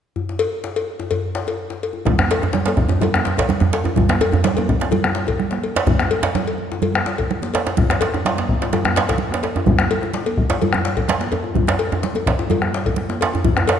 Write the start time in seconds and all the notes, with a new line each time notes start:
0.16 djembe bass
0.29 djembe slap
0.39 cowbell, djembe slap
0.53 djembe slap
0.64 djembe slap
0.76 cowbell, djembe slap
1.00 djembe slap, djembe tone
1.11 cowbell, djembe slap, djembe bass
1.35 djembe slap
1.47 cowbell, djembe tone
1.70 djembe slap
1.83 cowbell
1.93 djembe tone
2.05 bombo low, djembe tone, high conga, djembe bass, low conga
2.19 bombo rim, djembe slap, high conga, djembe bass
2.30 cowbell, djembe slap
2.42 bombo rim, djembe slap, djembe tone, high conga
2.53 djembe slap, djembe tone, low conga
2.66 cowbell, djembe slap, high conga
2.77 bombo low, djembe tone, high conga
2.89 djembe slap, djembe tone, djembe bass
3.01 cowbell, djembe slap, high conga, djembe bass, low conga
3.14 bombo rim, high conga, djembe tone
3.25 djembe slap, high conga, djembe tone
3.37 bombo low, cowbell, djembe slap, djembe tone, high conga
3.39 djembe slap
3.49 bombo rim, djembe tone, low conga
3.60 bombo rim, djembe slap, high conga, djembe bass
3.72 cowbell, djembe slap
3.84 djembe tone
3.96 bombo low, high conga, djembe tone, djembe bass, low conga
4.09 bombo rim, djembe slap, high conga
4.21 cowbell, djembe slap, djembe tone, high conga
4.32 bombo rim, djembe slap, djembe tone, high conga, djembe bass
4.44 djembe slap, low conga
4.57 cowbell, high conga, djembe tone
4.69 bombo low, djembe tone, high conga
4.80 djembe slap, djembe tone
4.91 cowbell, high conga, djembe bass, low conga
5.04 bombo rim, high conga
5.15 djembe slap, high conga
5.27 bombo low, cowbell, djembe slap, djembe tone, high conga
5.39 bombo rim, low conga
5.51 bombo rim, djembe slap, high conga
5.63 cowbell, djembe slap
5.76 djembe slap, djembe tone
5.87 bombo low, djembe tone, high conga, low conga, djembe bass
5.99 bombo rim, djembe slap, high conga
6.11 cowbell, djembe slap, high conga
6.23 bombo rim, djembe slap, djembe tone, high conga
6.35 djembe slap, djembe tone, low conga
6.47 cowbell
6.58 high conga
6.72 djembe slap, djembe tone
6.82 cowbell, high conga, low conga, djembe bass
6.94 bombo rim, high conga
7.06 djembe slap, high conga
7.18 bombo low, cowbell, djembe slap, djembe tone, high conga
7.31 bombo rim, low conga
7.42 djembe slap, high conga
7.54 cowbell, djembe slap
7.67 djembe slap, djembe tone
7.77 bombo rim, bombo low, high conga, low conga, djembe bass
7.90 bombo rim, djembe slap, high conga
8.01 cowbell, djembe slap, high conga
8.14 bombo rim, djembe slap, djembe tone, high conga
8.25 djembe slap, high conga, low conga
8.37 djembe slap, high conga
8.49 bombo low
8.62 djembe slap, djembe tone
8.73 bombo rim, cowbell, djembe slap, low conga, djembe bass
8.85 bombo rim, djembe slap, high conga, djembe tone
8.96 bombo rim, djembe slap
9.08 bombo rim, bombo low, cowbell, djembe slap, high conga, djembe tone
9.18 high conga, low conga
9.31 bombo rim, djembe slap, high conga
9.43 bombo rim, cowbell, djembe slap
9.56 djembe tone, high conga
9.66 bombo low, high conga, low conga, djembe bass
9.79 bombo rim, djembe slap, high conga
9.91 cowbell, djembe slap
10.02 bombo rim, djembe slap, high conga, djembe tone
10.13 djembe slap, low conga
10.26 cowbell, high conga
10.37 bombo low, high conga
10.50 djembe slap, djembe tone
10.62 cowbell, high conga, low conga, djembe bass
10.73 bombo rim, high conga, djembe tone
10.85 djembe slap, high conga
10.97 bombo low, cowbell, djembe slap, djembe tone
11.08 bombo rim, djembe slap, low conga
11.21 bombo rim, djembe slap, high conga
11.32 cowbell, djembe slap, djembe tone
11.44 djembe tone
11.55 bombo low, high conga, low conga, djembe bass
11.67 bombo rim, djembe slap, high conga
11.79 cowbell, djembe slap, high conga
11.92 bombo rim, djembe slap, djembe tone, high conga
12.03 djembe slap, low conga
12.15 cowbell, high conga
12.26 bombo low, djembe slap, high conga
12.39 djembe slap, djembe tone
12.50 cowbell, high conga, djembe tone, low conga, djembe bass
12.62 bombo rim, high conga
12.74 djembe slap, high conga
12.86 bombo low, cowbell, djembe slap, high conga, djembe tone
12.96 bombo rim, low conga
13.09 bombo rim, djembe slap, high conga
13.21 cowbell, djembe slap
13.33 djembe tone
13.44 bombo low, high conga, low conga, djembe bass
13.57 bombo rim, djembe slap, high conga, djembe tone
13.68 cowbell, djembe slap, high conga